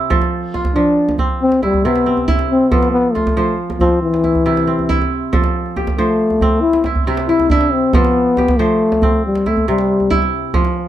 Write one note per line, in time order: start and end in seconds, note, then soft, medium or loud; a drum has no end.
0.00 0.15 C3 medium
0.00 1.19 C4 medium
0.00 0.16 E4 medium
0.10 0.74 F3 medium
0.10 1.42 A4 medium
0.10 djembe slap soft
0.10 djembe tone medium
0.10 djembe bass medium
0.22 djembe slap soft
0.44 djembe slap soft
0.54 1.69 F4 medium
0.54 djembe tone medium
0.65 djembe slap soft
0.65 djembe bass soft
0.75 1.46 F3 medium
0.75 1.16 D4 loud
0.98 djembe slap soft
1.09 djembe slap soft
1.09 djembe tone soft
1.18 2.06 C4 medium
1.18 djembe bass medium
1.30 djembe slap soft
1.42 1.62 C4 loud
1.52 djembe slap soft
1.62 1.87 G3 medium
1.62 1.85 E4 medium
1.62 djembe tone medium
1.74 djembe bass medium
1.85 2.77 C3 medium
1.85 2.29 B3 medium
1.85 2.28 E4 medium
1.96 djembe slap medium
2.06 3.80 C4 medium
2.17 djembe slap soft
2.17 djembe tone soft
2.28 2.78 E4 medium
2.28 djembe bass medium
2.39 djembe slap soft
2.50 2.73 C4 medium
2.50 djembe slap soft
2.71 3.36 F3 medium
2.71 2.91 B3 medium
2.71 4.03 A4 medium
2.71 djembe tone medium
2.71 djembe bass medium
2.82 djembe slap medium
2.92 3.15 B3 medium
2.92 djembe slap soft
3.05 djembe slap soft
3.13 3.58 A3 medium
3.13 4.30 F4 medium
3.13 djembe tone medium
3.27 djembe slap medium
3.27 djembe bass soft
3.37 4.07 F3 medium
3.37 4.56 C5 medium
3.70 djembe slap soft
3.70 djembe tone soft
3.80 4.01 F3 loud
3.80 4.67 C4 medium
3.80 djembe bass medium
4.02 5.07 E3 loud
4.14 djembe slap soft
4.24 4.45 E4 medium
4.24 djembe tone medium
4.35 djembe slap soft
4.35 djembe bass soft
4.46 5.38 C3 medium
4.46 4.89 E4 medium
4.57 djembe slap medium
4.67 6.42 C4 medium
4.67 djembe slap soft
4.79 djembe tone soft
4.89 5.39 E4 medium
4.89 djembe slap soft
4.89 djembe bass medium
5.02 djembe slap soft
5.33 5.97 F3 medium
5.33 6.65 A4 medium
5.33 djembe slap soft
5.33 djembe tone medium
5.33 djembe bass medium
5.44 djembe slap medium
5.66 djembe slap soft
5.76 7.18 G4 medium
5.76 djembe tone medium
5.87 djembe slap medium
5.87 djembe bass medium
5.98 6.69 F3 medium
5.98 6.63 A3 medium
5.98 7.17 C5 medium
6.20 djembe slap soft
6.30 djembe tone medium
6.41 8.22 C4 medium
6.41 djembe bass medium
6.52 djembe slap soft
6.61 6.84 E4 loud
6.73 djembe slap medium
6.84 7.07 E4 medium
6.84 djembe tone medium
6.96 djembe bass medium
7.07 7.99 C3 medium
7.07 7.29 E4 medium
7.17 djembe slap medium
7.29 7.52 E4 loud
7.29 7.51 E4 medium
7.40 djembe slap soft
7.40 djembe tone medium
7.50 7.74 D4 medium
7.50 8.01 E4 medium
7.50 djembe bass medium
7.61 djembe slap medium
7.73 7.96 C4 medium
7.73 djembe slap soft
7.93 8.58 F3 medium
7.93 8.60 B3 loud
7.93 9.26 A4 medium
7.93 djembe slap soft
7.93 djembe tone medium
7.93 djembe bass medium
8.04 djembe slap medium
8.37 9.79 G4 medium
8.37 djembe tone medium
8.48 djembe slap medium
8.48 djembe bass medium
8.59 9.29 F3 medium
8.59 9.24 A3 loud
8.59 9.78 C5 medium
8.92 djembe slap soft
8.92 djembe tone medium
9.02 10.83 C4 medium
9.02 djembe bass medium
9.14 djembe slap soft
9.26 9.49 G3 medium
9.35 djembe slap medium
9.46 9.68 A3 medium
9.46 10.10 E4 medium
9.46 djembe tone medium
9.57 djembe bass medium
9.68 10.59 C3 medium
9.68 10.29 G3 medium
9.78 djembe slap medium
10.00 djembe slap soft
10.00 djembe tone soft
10.11 10.60 E4 medium
10.11 djembe bass medium
10.22 djembe slap soft
10.32 djembe slap soft
10.54 10.88 F3 medium
10.54 djembe slap soft
10.54 djembe tone medium
10.54 djembe bass medium
10.65 djembe slap soft